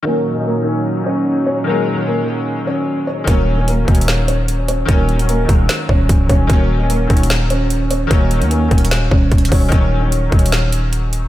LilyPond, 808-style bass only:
\new Staff \with { instrumentName = "808-style bass" } { \clef bass \time 4/4 \key ees \minor \tempo 4 = 149 r1 | r1 | ees,,4. ees,,2~ ees,,8 | ees,,4. ees,,8 r8 ees,,8 des,,8 ees,,8 |
ees,,4. ees,,2~ ees,,8 | ees,,8. ees,8. ees,,4 ees,,8 ees,,8 ees,,8 | ees,,4. ees,,2~ ees,,8 | }